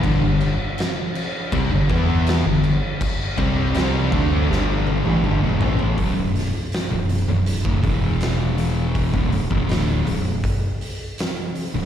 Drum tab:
CC |x-x-x-x-x-x-x-x-|x-x-x-x---------|----------------|----------------|
HH |----------------|----------------|o-o-o-o-o-o-o-o-|o-o-o-o-o-o-o-o-|
SD |----o-------o---|----o---o-------|--o-o-------o---|----o-------o---|
T1 |----------------|----------oo----|----------------|----------------|
T2 |----------------|------------o---|----------------|----------------|
FT |----------------|--------------oo|----------------|----------------|
BD |o-------o-o-----|o-o---o---------|o--------oo-----|oo-o----o-------|